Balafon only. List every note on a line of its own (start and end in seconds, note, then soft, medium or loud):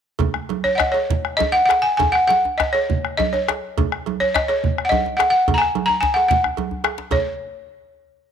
0.64 0.76 C#5 medium
0.75 0.95 D#5 medium
0.75 0.79 F#5 medium
0.92 1.40 C#5 medium
1.37 1.54 D#5 medium
1.52 1.64 F#5 medium
1.66 1.83 F#5 medium
1.82 1.96 G#5 medium
1.97 2.14 G#5 medium
2.12 2.19 F#5 medium
2.28 2.59 F#5 medium
2.58 2.74 D#5 medium
2.73 3.19 C#5 medium
3.17 3.33 D#5 medium
3.33 3.63 C#5 medium
4.20 4.35 C#5 medium
4.34 4.49 D#5 medium
4.48 4.86 C#5 medium
4.85 4.91 F#5 medium
4.89 5.19 D#5 medium
5.17 5.29 F#5 medium
5.30 5.54 F#5 medium
5.54 5.88 G#5 medium
5.54 5.61 A#5 medium
5.86 6.02 A#5 medium
6.01 6.16 G#5 medium
6.14 6.27 F#5 medium
6.28 6.93 F#5 medium
7.12 7.24 C#5 medium